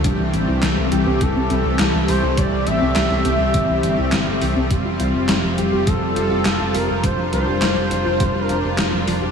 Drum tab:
HH |x-x-x-x-x-x-x-o-|x-x-x-x-x-x-x-o-|x-x-x-x-x-x-x-o-|x-x-x-x-x-x-x-o-|
CP |----x-------x---|----x-------x---|----x-------x---|----x-------x---|
SD |----o-------o---|----oo------o---|----o-------o---|----oo------o---|
BD |o-------o-------|o-------o-------|o-------o-------|o-------o-------|